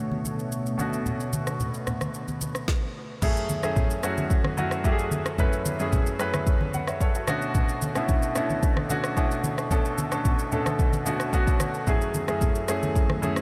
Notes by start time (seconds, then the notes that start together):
Already playing: B2 D3 A3 C#4 D4 F#4 C#5
0.12 high conga
0.25 high conga, shaker
0.39 shaker
0.52 shaker
0.66 shaker
0.78 B2 A3 C#4 D4 F#4 B4, high conga, shaker
0.93 shaker
1.06 low conga, shaker
1.20 shaker
1.33 high conga, shaker
1.47 cross-stick, high conga, shaker
1.60 low conga, shaker
1.74 shaker
1.87 cross-stick, low conga, shaker
2.01 cross-stick, high conga, shaker
2.14 shaker
2.28 high conga, shaker
2.41 high conga, shaker
2.55 cross-stick, shaker
2.68 kick, snare
3.22 F#2 A3 C#4 E4 G#4, kick, crash, low conga, shaker
3.37 shaker
3.49 high conga, shaker
3.63 F#2 A3 C#4 E4 G#4, cross-stick, high conga, shaker
3.76 kick, low conga, shaker
3.90 shaker
4.03 F#2 A3 C#4 E4 F#4, cross-stick, shaker
4.17 high conga, shaker
4.30 kick, shaker
4.44 cross-stick, high conga
4.57 F#2 A3 C#4 E4 F#4, high conga, shaker
4.71 cross-stick, shaker
4.84 F#2 A3 C#4 E4 G4, kick, shaker
4.92 G#4
4.99 shaker
5.11 high conga, shaker
5.26 cross-stick, shaker
5.38 F#2 A3 C#4 E4 B4, kick, low conga, shaker
5.53 shaker
5.66 high conga, shaker
5.79 F#2 A3 C#4 E4 G#4, high conga, shaker
5.92 kick, low conga, shaker
6.06 shaker
6.19 F#2 A3 C#4 E4 B4, cross-stick, shaker
6.34 cross-stick, high conga, shaker
6.47 kick, shaker
6.61 high conga
6.74 F#5, high conga, shaker
6.87 C#5 E5, cross-stick, shaker
7.01 A4 C#5, kick, shaker
7.15 F#4 A4, shaker
7.28 B2 A3 C#4 D4 F#4, cross-stick, high conga, shaker
7.42 shaker
7.55 kick, low conga, shaker
7.69 shaker
7.82 high conga, shaker
7.95 B2 A3 C#4 D4 E4, cross-stick, high conga, shaker
8.09 kick, low conga, shaker
8.22 shaker
8.35 B2 A3 C#4 D4 E4, cross-stick, shaker
8.50 high conga, shaker
8.63 kick, shaker
8.77 cross-stick, high conga
8.89 B2 A3 C#4 D4 F#4, high conga, shaker
9.04 cross-stick, shaker
9.17 B2 A3 C#4 D4 E4, kick, shaker
9.31 shaker
9.44 high conga, shaker
9.58 cross-stick, shaker
9.70 B2 A3 C#4 D4 A4, kick, low conga, shaker
9.85 shaker
9.98 high conga, shaker
10.11 B2 A3 C#4 D4 A4, cross-stick, high conga, shaker
10.25 kick, low conga, shaker
10.39 shaker
10.52 B2 A3 C#4 D4 A4, low conga, shaker
10.66 cross-stick, high conga, shaker
10.79 kick, shaker
10.93 high conga, shaker
11.06 B2 A3 C#4 D4 F#4, high conga, shaker
11.20 cross-stick, shaker
11.33 B2 A3 C#4 D4 F#4, kick, shaker
11.47 kick, shaker
11.60 cross-stick, high conga, shaker
11.74 shaker
11.87 F#2 F#3 A3 C#4 E4 G#4, kick, low conga, shaker
12.01 shaker
12.14 high conga, shaker
12.28 F#2 A3 C#4 E4 G#4, cross-stick, high conga, shaker
12.41 kick, low conga, shaker
12.55 shaker
12.68 F#2 A3 C#4 E4 G#4, cross-stick, shaker
12.83 high conga, shaker
12.95 kick, shaker
13.10 cross-stick, high conga
13.22 F#2 A3 C#4 E4 G#4, high conga, shaker
13.36 cross-stick, shaker